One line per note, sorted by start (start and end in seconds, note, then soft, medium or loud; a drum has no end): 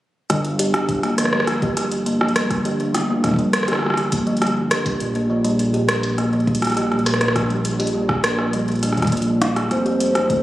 0.30 4.97 G1 medium
0.30 0.42 G3 medium
0.30 cross-stick medium
0.30 closed hi-hat medium
0.45 closed hi-hat soft
0.59 0.72 G4 medium
0.59 closed hi-hat medium
0.74 0.81 G3 medium
0.74 cross-stick medium
0.74 closed hi-hat soft
0.89 kick medium
0.89 closed hi-hat soft
1.03 1.16 A#3 medium
1.03 cross-stick medium
1.03 closed hi-hat soft
1.18 1.30 F3 medium
1.18 cross-stick soft
1.18 closed hi-hat medium
1.25 cross-stick medium
1.33 1.45 G3 medium
1.33 cross-stick medium
1.40 cross-stick medium
1.47 cross-stick medium
1.47 closed hi-hat medium
1.62 1.75 G4 medium
1.62 kick loud
1.62 closed hi-hat soft
1.77 1.84 G3 medium
1.77 cross-stick soft
1.77 closed hi-hat medium
1.92 closed hi-hat medium
2.06 2.19 A#3 medium
2.06 closed hi-hat soft
2.21 2.33 F3 medium
2.21 cross-stick medium
2.28 closed hi-hat soft
2.36 2.48 G3 medium
2.36 cross-stick loud
2.36 closed hi-hat medium
2.50 kick loud
2.50 cross-stick medium
2.50 closed hi-hat medium
2.65 2.77 G4 medium
2.65 closed hi-hat medium
2.80 2.87 G3 medium
2.80 closed hi-hat soft
2.95 cross-stick medium
2.95 closed hi-hat loud
3.09 3.22 A#3 medium
3.24 3.36 F3 medium
3.24 kick soft
3.24 cross-stick medium
3.24 closed hi-hat medium
3.26 kick medium
3.29 kick medium
3.31 kick medium
3.34 kick medium
3.36 3.51 G3 medium
3.36 kick loud
3.36 closed hi-hat soft
3.53 cross-stick loud
3.53 closed hi-hat medium
3.63 cross-stick medium
3.68 3.80 G4 loud
3.68 cross-stick soft
3.68 closed hi-hat medium
3.72 cross-stick soft
3.72 cross-stick medium
3.75 cross-stick soft
3.79 cross-stick medium
3.83 3.90 G3 medium
3.83 cross-stick medium
3.86 cross-stick medium
3.90 cross-stick medium
3.94 cross-stick medium
3.97 cross-stick medium
3.97 closed hi-hat soft
4.12 4.25 A#3 medium
4.12 kick loud
4.12 closed hi-hat medium
4.27 4.39 F3 loud
4.27 closed hi-hat soft
4.37 closed hi-hat soft
4.42 4.54 G3 loud
4.42 cross-stick medium
4.42 closed hi-hat soft
4.47 closed hi-hat soft
4.71 4.83 G4 medium
4.71 cross-stick loud
4.71 closed hi-hat medium
4.86 4.93 G3 medium
4.86 kick loud
4.86 closed hi-hat medium
5.00 9.68 A#1 medium
5.00 closed hi-hat medium
5.15 5.27 A#3 medium
5.15 closed hi-hat soft
5.30 5.42 F3 medium
5.44 5.57 G3 loud
5.44 closed hi-hat medium
5.59 closed hi-hat soft
5.74 5.86 G4 loud
5.74 closed hi-hat soft
5.89 5.96 G3 medium
5.89 cross-stick loud
5.89 closed hi-hat medium
6.03 closed hi-hat medium
6.18 6.30 A#3 medium
6.18 cross-stick soft
6.18 closed hi-hat soft
6.33 6.45 F3 medium
6.33 closed hi-hat soft
6.40 closed hi-hat soft
6.47 6.60 G3 loud
6.47 kick loud
6.47 closed hi-hat soft
6.55 closed hi-hat medium
6.62 cross-stick medium
6.62 closed hi-hat soft
6.65 cross-stick medium
6.65 closed hi-hat soft
6.67 closed hi-hat soft
6.70 cross-stick soft
6.70 closed hi-hat soft
6.72 closed hi-hat soft
6.74 6.89 G4 medium
6.74 cross-stick soft
6.74 closed hi-hat soft
6.77 closed hi-hat soft
6.82 cross-stick soft
6.87 cross-stick soft
6.91 6.99 G3 medium
6.91 cross-stick soft
6.91 closed hi-hat soft
6.99 closed hi-hat soft
7.06 cross-stick medium
7.06 closed hi-hat medium
7.14 cross-stick medium
7.14 closed hi-hat soft
7.21 7.33 A#3 medium
7.21 cross-stick medium
7.21 closed hi-hat soft
7.28 cross-stick medium
7.36 7.48 F3 medium
7.36 kick loud
7.36 cross-stick medium
7.36 closed hi-hat medium
7.50 7.63 G3 medium
7.50 closed hi-hat soft
7.65 closed hi-hat medium
7.80 7.92 G4 medium
7.80 closed hi-hat soft
7.87 closed hi-hat medium
7.95 8.02 G3 medium
8.09 kick loud
8.09 cross-stick medium
8.24 8.36 A#3 medium
8.24 cross-stick loud
8.24 closed hi-hat medium
8.39 8.51 F3 loud
8.39 cross-stick medium
8.53 8.66 G3 loud
8.53 closed hi-hat soft
8.68 closed hi-hat soft
8.72 closed hi-hat soft
8.75 closed hi-hat soft
8.79 8.96 G3 medium
8.79 cross-stick soft
8.79 closed hi-hat soft
8.83 closed hi-hat medium
8.90 cross-stick soft
8.90 closed hi-hat soft
8.94 kick soft
8.94 closed hi-hat soft
8.97 9.10 G3 medium
8.97 kick medium
8.97 closed hi-hat soft
9.02 kick medium
9.02 cross-stick medium
9.02 closed hi-hat soft
9.05 kick medium
9.05 closed hi-hat soft
9.07 kick medium
9.10 9.26 A#3 loud
9.10 kick medium
9.10 closed hi-hat soft
9.17 closed hi-hat soft
9.22 closed hi-hat soft
9.27 9.34 G3 medium
9.41 9.54 G3 medium
9.41 cross-stick loud
9.41 closed hi-hat medium
9.56 9.69 F3 medium
9.56 cross-stick medium
9.56 closed hi-hat soft
9.71 10.43 F1 medium
9.71 10.43 F3 medium
9.71 10.43 C5 loud
9.71 cross-stick soft
9.71 closed hi-hat soft
9.86 9.98 G4 medium
9.86 closed hi-hat soft
10.00 10.08 G3 medium
10.00 closed hi-hat medium
10.10 10.43 F4 medium
10.15 cross-stick medium
10.15 closed hi-hat soft
10.30 10.42 A3 medium
10.30 kick medium
10.30 closed hi-hat soft
10.38 10.43 G4 medium